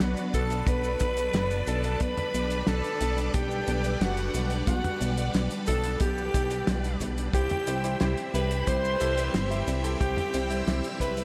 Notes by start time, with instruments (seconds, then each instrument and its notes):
Already playing: string machine F#3 B3 D4 B4 D5
0.00 analog synth bass B1, snare, closed hi-hat, shaker
0.17 closed hi-hat, shaker
0.34 analog synth bass B1, alto saxophone A4, digital synth lead A5, kick, closed hi-hat, shaker
0.50 closed hi-hat, shaker
0.67 analog synth bass B1, alto saxophone B4, digital synth lead B5, kick, closed hi-hat, shaker
0.84 shaker
1.00 analog synth bass B1, kick, closed hi-hat, shaker
1.17 closed hi-hat, shaker
1.33 analog synth bass F#1, snare, closed hi-hat, shaker
1.50 closed hi-hat, shaker
1.67 analog synth bass B1, alto saxophone A4, digital synth lead A5, closed hi-hat, shaker
1.83 closed hi-hat, shaker
2.00 analog synth bass B1, string machine G3, alto saxophone B4, digital synth lead B5, kick, closed hi-hat, shaker
2.17 closed hi-hat, mid tom
2.34 analog synth bass B1, closed hi-hat, shaker
2.50 closed hi-hat, shaker
2.67 analog synth bass B1, alto saxophone A4, digital synth lead A5, snare, closed hi-hat, shaker
2.84 closed hi-hat
3.01 analog synth bass B1, closed hi-hat, shaker
3.18 closed hi-hat, shaker
3.34 analog synth bass B1, alto saxophone G4, digital synth lead G5, kick, closed hi-hat, shaker
3.51 shaker
3.67 analog synth bass B1, closed hi-hat, shaker
3.84 closed hi-hat, shaker
4.01 analog synth bass F#1, alto saxophone F#4, digital synth lead F#5, snare, closed hi-hat, shaker
4.17 closed hi-hat, shaker
4.34 analog synth bass B1, closed hi-hat, shaker
4.50 closed hi-hat, shaker
4.67 analog synth bass B1, alto saxophone F#4, digital synth lead F#5, kick, closed hi-hat, shaker
4.84 closed hi-hat, mid tom
5.01 analog synth bass B1, closed hi-hat, shaker
5.18 closed hi-hat, shaker
5.34 analog synth bass B1, snare, closed hi-hat, shaker
5.50 closed hi-hat, shaker
5.67 analog synth bass B1, alto saxophone A4, digital synth lead A5, kick, closed hi-hat, shaker
5.84 closed hi-hat, shaker
6.00 analog synth bass B1, alto saxophone G4, digital synth lead G5, kick, closed hi-hat, shaker
6.18 shaker
6.34 analog synth bass B1, kick, closed hi-hat, shaker
6.50 closed hi-hat, shaker
6.67 analog synth bass B1, snare, closed hi-hat, shaker
6.84 closed hi-hat, shaker
7.00 analog synth bass B1, kick, closed hi-hat, shaker
7.18 closed hi-hat, shaker
7.33 analog synth bass C2, string machine G3 C4 E4 G4 E5, electric grand piano E4 G4 C5, alto saxophone G4, digital synth lead G5, kick, closed hi-hat, shaker
7.49 closed hi-hat, mid tom
7.67 analog synth bass C2, electric grand piano E4 G4 C5, closed hi-hat, shaker
7.84 electric grand piano E4 G4 C5, closed hi-hat, shaker
8.00 analog synth bass C2, electric grand piano E4 G4 C5, snare, closed hi-hat, shaker
8.17 closed hi-hat
8.34 analog synth bass C2, electric grand piano E4 G4 E5, alto saxophone B4, digital synth lead B5, closed hi-hat, shaker
8.51 closed hi-hat, shaker
8.67 analog synth bass C2, electric grand piano E4 G4 C5, alto saxophone C5, digital synth lead C6, kick, closed hi-hat, shaker
8.84 shaker
9.00 analog synth bass C2, electric grand piano E4 G4 A4, closed hi-hat, shaker
9.17 electric grand piano E4 G4 C5, closed hi-hat, shaker
9.34 analog synth bass G1, snare, closed hi-hat, shaker
9.51 electric grand piano E4 G4 E5, closed hi-hat, shaker
9.67 analog synth bass C2, closed hi-hat, shaker
9.84 electric grand piano E4 G4 A4, closed hi-hat, shaker
10.00 analog synth bass C2, electric grand piano E4 G4 C5, alto saxophone G4, digital synth lead G5, kick, closed hi-hat, shaker
10.17 closed hi-hat, mid tom
10.34 analog synth bass C2, electric grand piano E4 G4 C5, closed hi-hat, shaker
10.50 electric grand piano E4 G4 C5, closed hi-hat, shaker
10.67 analog synth bass C2, electric grand piano E4 G4 C5, snare, closed hi-hat, shaker
10.84 closed hi-hat, shaker
11.00 analog synth bass C2, electric grand piano E4 G4 E5, alto saxophone B4, digital synth lead B5, kick, closed hi-hat, shaker
11.17 closed hi-hat, shaker